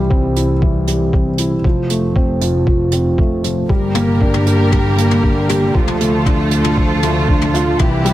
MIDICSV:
0, 0, Header, 1, 5, 480
1, 0, Start_track
1, 0, Tempo, 512821
1, 1539, Time_signature, 4, 2, 24, 8
1, 7612, End_track
2, 0, Start_track
2, 0, Title_t, "Felt piano"
2, 0, Program_c, 0, 0
2, 0, Control_c, 0, 64, 127
2, 0, Note_on_c, 0, 52, 75
2, 0, Note_on_c, 0, 55, 86
2, 95, Note_on_c, 0, 60, 84
2, 325, Note_off_c, 0, 60, 0
2, 341, Note_on_c, 0, 64, 63
2, 477, Note_off_c, 0, 64, 0
2, 581, Note_off_c, 0, 52, 0
2, 581, Note_on_c, 0, 52, 70
2, 808, Note_off_c, 0, 52, 0
2, 820, Note_off_c, 0, 55, 0
2, 820, Note_on_c, 0, 55, 60
2, 1047, Note_off_c, 0, 55, 0
2, 1062, Note_on_c, 0, 60, 68
2, 1197, Note_off_c, 0, 60, 0
2, 1301, Note_on_c, 0, 64, 62
2, 1437, Note_off_c, 0, 64, 0
2, 1543, Note_on_c, 0, 53, 81
2, 1550, Control_c, 0, 64, 0
2, 1690, Control_c, 0, 64, 127
2, 1769, Note_off_c, 0, 53, 0
2, 1782, Note_on_c, 0, 57, 62
2, 2009, Note_off_c, 0, 57, 0
2, 2022, Note_on_c, 0, 60, 72
2, 2249, Note_off_c, 0, 60, 0
2, 2259, Note_on_c, 0, 65, 66
2, 2487, Note_off_c, 0, 65, 0
2, 2501, Note_on_c, 0, 53, 69
2, 2728, Note_off_c, 0, 53, 0
2, 2740, Note_on_c, 0, 60, 64
2, 2967, Note_off_c, 0, 60, 0
2, 2981, Note_on_c, 0, 57, 65
2, 3208, Note_off_c, 0, 57, 0
2, 3218, Note_on_c, 0, 53, 65
2, 3447, Note_off_c, 0, 53, 0
2, 3459, Note_on_c, 0, 55, 77
2, 3471, Control_c, 0, 64, 0
2, 3630, Control_c, 0, 64, 127
2, 3687, Note_off_c, 0, 55, 0
2, 3698, Note_on_c, 0, 58, 85
2, 3835, Note_off_c, 0, 58, 0
2, 3940, Note_on_c, 0, 62, 89
2, 4168, Note_off_c, 0, 62, 0
2, 4180, Note_on_c, 0, 67, 69
2, 4316, Note_off_c, 0, 67, 0
2, 4421, Note_on_c, 0, 55, 76
2, 4648, Note_off_c, 0, 55, 0
2, 4662, Note_on_c, 0, 58, 63
2, 4888, Note_off_c, 0, 58, 0
2, 4899, Note_on_c, 0, 62, 68
2, 5036, Note_off_c, 0, 62, 0
2, 5141, Note_on_c, 0, 67, 70
2, 5277, Note_off_c, 0, 67, 0
2, 5377, Note_on_c, 0, 53, 78
2, 5389, Control_c, 0, 64, 0
2, 5553, Control_c, 0, 64, 127
2, 5606, Note_off_c, 0, 53, 0
2, 5621, Note_on_c, 0, 57, 66
2, 5848, Note_off_c, 0, 57, 0
2, 5860, Note_on_c, 0, 62, 72
2, 6087, Note_off_c, 0, 62, 0
2, 6099, Note_on_c, 0, 65, 63
2, 6327, Note_off_c, 0, 65, 0
2, 6339, Note_on_c, 0, 53, 72
2, 6567, Note_off_c, 0, 53, 0
2, 6581, Note_on_c, 0, 57, 65
2, 6808, Note_off_c, 0, 57, 0
2, 6819, Note_on_c, 0, 62, 68
2, 6956, Note_off_c, 0, 62, 0
2, 7058, Note_on_c, 0, 65, 92
2, 7286, Note_off_c, 0, 65, 0
2, 7297, Note_on_c, 0, 52, 88
2, 7311, Control_c, 0, 64, 0
2, 7477, Control_c, 0, 64, 127
2, 7526, Note_off_c, 0, 52, 0
2, 7535, Note_on_c, 0, 55, 89
2, 7612, Note_off_c, 0, 55, 0
2, 7612, End_track
3, 0, Start_track
3, 0, Title_t, "String section"
3, 0, Program_c, 1, 48
3, 3457, Note_on_c, 1, 70, 74
3, 3458, Note_on_c, 1, 58, 61
3, 3458, Note_on_c, 1, 67, 60
3, 3459, Note_on_c, 1, 50, 66
3, 3459, Note_on_c, 1, 55, 62
3, 5359, Note_off_c, 1, 58, 0
3, 5359, Note_off_c, 1, 67, 0
3, 5359, Note_off_c, 1, 70, 0
3, 5360, Note_off_c, 1, 55, 0
3, 5381, Note_on_c, 1, 53, 63
3, 5381, Note_on_c, 1, 65, 68
3, 5382, Note_on_c, 1, 57, 63
3, 5382, Note_on_c, 1, 69, 74
3, 7261, Note_off_c, 1, 50, 0
3, 7281, Note_off_c, 1, 53, 0
3, 7281, Note_off_c, 1, 57, 0
3, 7281, Note_off_c, 1, 65, 0
3, 7282, Note_off_c, 1, 69, 0
3, 7300, Note_on_c, 1, 48, 75
3, 7300, Note_on_c, 1, 55, 67
3, 7301, Note_on_c, 1, 52, 61
3, 7301, Note_on_c, 1, 67, 82
3, 7303, Note_on_c, 1, 64, 69
3, 7612, Note_off_c, 1, 48, 0
3, 7612, Note_off_c, 1, 52, 0
3, 7612, Note_off_c, 1, 55, 0
3, 7612, Note_off_c, 1, 64, 0
3, 7612, Note_off_c, 1, 67, 0
3, 7612, End_track
4, 0, Start_track
4, 0, Title_t, "Double bass section"
4, 0, Program_c, 2, 48
4, 0, Note_on_c, 2, 36, 77
4, 1516, Note_off_c, 2, 36, 0
4, 1539, Note_on_c, 2, 29, 79
4, 3435, Note_off_c, 2, 29, 0
4, 3458, Note_on_c, 2, 31, 82
4, 5355, Note_off_c, 2, 31, 0
4, 5380, Note_on_c, 2, 38, 84
4, 7275, Note_off_c, 2, 38, 0
4, 7298, Note_on_c, 2, 36, 88
4, 7612, Note_off_c, 2, 36, 0
4, 7612, End_track
5, 0, Start_track
5, 0, Title_t, "Drums"
5, 100, Note_on_c, 9, 36, 99
5, 194, Note_off_c, 9, 36, 0
5, 338, Note_on_c, 9, 42, 70
5, 431, Note_off_c, 9, 42, 0
5, 581, Note_on_c, 9, 36, 93
5, 674, Note_off_c, 9, 36, 0
5, 817, Note_on_c, 9, 42, 67
5, 910, Note_off_c, 9, 42, 0
5, 1060, Note_on_c, 9, 36, 96
5, 1153, Note_off_c, 9, 36, 0
5, 1292, Note_on_c, 9, 42, 73
5, 1386, Note_off_c, 9, 42, 0
5, 1539, Note_on_c, 9, 36, 99
5, 1632, Note_off_c, 9, 36, 0
5, 1775, Note_on_c, 9, 42, 67
5, 1869, Note_off_c, 9, 42, 0
5, 2019, Note_on_c, 9, 36, 96
5, 2112, Note_off_c, 9, 36, 0
5, 2258, Note_on_c, 9, 42, 67
5, 2351, Note_off_c, 9, 42, 0
5, 2498, Note_on_c, 9, 36, 94
5, 2592, Note_off_c, 9, 36, 0
5, 2729, Note_on_c, 9, 42, 71
5, 2823, Note_off_c, 9, 42, 0
5, 2978, Note_on_c, 9, 36, 96
5, 3072, Note_off_c, 9, 36, 0
5, 3220, Note_on_c, 9, 42, 63
5, 3313, Note_off_c, 9, 42, 0
5, 3458, Note_on_c, 9, 36, 96
5, 3552, Note_off_c, 9, 36, 0
5, 3694, Note_on_c, 9, 45, 66
5, 3695, Note_on_c, 9, 42, 73
5, 3788, Note_off_c, 9, 42, 0
5, 3788, Note_off_c, 9, 45, 0
5, 3938, Note_on_c, 9, 36, 96
5, 4032, Note_off_c, 9, 36, 0
5, 4059, Note_on_c, 9, 45, 59
5, 4153, Note_off_c, 9, 45, 0
5, 4179, Note_on_c, 9, 42, 68
5, 4273, Note_off_c, 9, 42, 0
5, 4419, Note_on_c, 9, 36, 86
5, 4419, Note_on_c, 9, 45, 54
5, 4512, Note_off_c, 9, 45, 0
5, 4513, Note_off_c, 9, 36, 0
5, 4664, Note_on_c, 9, 42, 72
5, 4757, Note_off_c, 9, 42, 0
5, 4782, Note_on_c, 9, 45, 51
5, 4876, Note_off_c, 9, 45, 0
5, 4899, Note_on_c, 9, 36, 90
5, 4993, Note_off_c, 9, 36, 0
5, 5140, Note_on_c, 9, 45, 63
5, 5146, Note_on_c, 9, 42, 62
5, 5234, Note_off_c, 9, 45, 0
5, 5240, Note_off_c, 9, 42, 0
5, 5379, Note_on_c, 9, 36, 93
5, 5473, Note_off_c, 9, 36, 0
5, 5498, Note_on_c, 9, 45, 57
5, 5592, Note_off_c, 9, 45, 0
5, 5622, Note_on_c, 9, 42, 70
5, 5715, Note_off_c, 9, 42, 0
5, 5859, Note_on_c, 9, 36, 92
5, 5860, Note_on_c, 9, 45, 53
5, 5952, Note_off_c, 9, 36, 0
5, 5954, Note_off_c, 9, 45, 0
5, 6093, Note_on_c, 9, 42, 68
5, 6187, Note_off_c, 9, 42, 0
5, 6218, Note_on_c, 9, 45, 64
5, 6311, Note_off_c, 9, 45, 0
5, 6339, Note_on_c, 9, 36, 90
5, 6432, Note_off_c, 9, 36, 0
5, 6576, Note_on_c, 9, 42, 61
5, 6577, Note_on_c, 9, 45, 61
5, 6670, Note_off_c, 9, 42, 0
5, 6671, Note_off_c, 9, 45, 0
5, 6818, Note_on_c, 9, 36, 91
5, 6912, Note_off_c, 9, 36, 0
5, 6938, Note_on_c, 9, 45, 56
5, 7032, Note_off_c, 9, 45, 0
5, 7062, Note_on_c, 9, 42, 65
5, 7156, Note_off_c, 9, 42, 0
5, 7293, Note_on_c, 9, 45, 64
5, 7298, Note_on_c, 9, 36, 95
5, 7387, Note_off_c, 9, 45, 0
5, 7391, Note_off_c, 9, 36, 0
5, 7538, Note_on_c, 9, 42, 76
5, 7612, Note_off_c, 9, 42, 0
5, 7612, End_track
0, 0, End_of_file